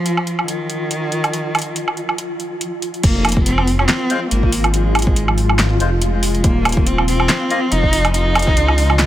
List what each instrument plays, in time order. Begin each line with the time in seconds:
Already playing: cello F3, ambient pad F4
0.06 closed hi-hat
0.17 low woodblock
0.27 closed hi-hat
0.39 low woodblock
0.48 cello D#3, closed hi-hat
0.70 closed hi-hat
0.91 closed hi-hat
1.12 closed hi-hat
1.24 closed hi-hat, low woodblock
1.33 closed hi-hat
1.55 closed hi-hat, low woodblock
1.59 closed hi-hat
1.62 closed hi-hat
1.76 closed hi-hat
1.88 low woodblock
1.97 closed hi-hat
2.09 low woodblock
2.18 closed hi-hat
2.40 closed hi-hat
2.61 closed hi-hat
2.82 closed hi-hat
2.94 closed hi-hat
3.03 detuned saw bass F1, cello A#3, ambient pad F4, kick, closed hi-hat, crash
3.25 closed hi-hat, low woodblock
3.29 closed hi-hat
3.32 closed hi-hat
3.37 kick
3.46 cello C4, closed hi-hat
3.58 low woodblock
3.67 open hi-hat
3.79 cello C#4, low woodblock
3.88 cello C4, snare, clap, closed hi-hat
4.10 melodica G#3 F4 C5, closed hi-hat
4.31 detuned saw bass G#1, cello A#3, closed hi-hat
4.43 kick
4.52 open hi-hat
4.64 closed hi-hat, low woodblock
4.74 cello G#3, closed hi-hat
4.95 closed hi-hat, low woodblock
4.99 closed hi-hat
5.02 closed hi-hat
5.07 kick
5.16 detuned saw bass G#1, closed hi-hat
5.28 low woodblock
5.38 open hi-hat
5.49 low woodblock
5.59 snare, clap, closed hi-hat
5.80 detuned saw bass F1, melodica G#3 F4 C5, closed hi-hat
6.02 cello G#3, closed hi-hat
6.23 open hi-hat
6.35 closed hi-hat
6.44 detuned saw bass D#1, cello A#3, kick, closed hi-hat
6.65 closed hi-hat, low woodblock
6.69 closed hi-hat
6.72 closed hi-hat
6.77 kick
6.87 cello C4, closed hi-hat
6.98 low woodblock
7.08 cello C4, open hi-hat
7.20 low woodblock
7.29 snare, clap, closed hi-hat
7.50 melodica A#3 F4 D#5, closed hi-hat
7.72 detuned saw bass F1, cello D#4, closed hi-hat
7.83 kick
7.93 open hi-hat
8.05 closed hi-hat, low woodblock
8.14 cello D#4, closed hi-hat
8.35 closed hi-hat, low woodblock
8.39 closed hi-hat
8.42 closed hi-hat
8.47 kick, snare
8.57 detuned saw bass C#2, closed hi-hat
8.68 low woodblock
8.78 open hi-hat
8.90 low woodblock
8.99 snare, clap, closed hi-hat